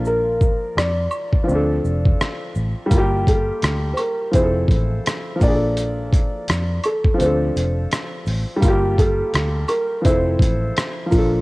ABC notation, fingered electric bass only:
X:1
M:4/4
L:1/16
Q:"Swing 16ths" 1/4=84
K:Gdor
V:1 name="Fingered electric bass" clef=bass
B,,,4 F,,2 z2 D,,2 F,,,2 z2 A,,, z | G,,,4 D,,2 z2 F,,,2 A,,,2 z2 B,,,2- | B,,,4 F,,2 z2 D,,2 F,,,2 z2 A,,, z | G,,,4 D,,2 z2 F,,,2 A,,,2 z2 B,,,2 |]